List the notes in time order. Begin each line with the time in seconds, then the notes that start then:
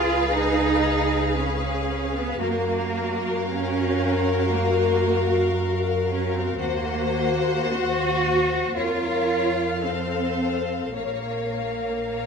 Already playing: C#2 F4 G#4 B4 F5
0.30 D#4
1.36 C#4
2.16 B3
2.41 F#2 A#3 F#4 A#4 F5
3.45 C#4
4.51 A#3
6.09 C#4
6.34 C4
6.60 D#2 A#3 F#4 C5 F#5
7.72 F#4
8.76 F2 F4 A#4 C#5 F5
9.83 C4 A4 C5
10.95 A#1 A#3 A#4 C#5 F5
12.07 C#5